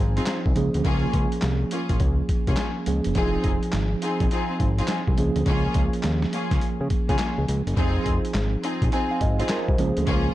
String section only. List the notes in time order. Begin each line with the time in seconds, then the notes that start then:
0.17 C4 D#4 F4 G#4
0.85 A#3 C#4 F4 G#4
1.71 A#3 C#4 F4 G#4
2.47 A#3 C#4 F4 G#4
3.16 C4 D#4 F4 G#4
4.02 C4 D#4 F4 G#4
4.31 C4 D#4 F4 G#4
4.78 C4 D#4 F4 G#4
5.46 A#3 C#4 F4 G#4
6.33 A#3 C#4 F4 G#4
7.09 A#3 C#4 F4 G#4
7.77 C4 D#4 F4 G#4
8.63 C4 D#4 F4 G#4
8.92 C4 D#4 F4 G#4
9.39 C4 D#4 F4 G#4
10.07 A#3 C#4 F4 G#4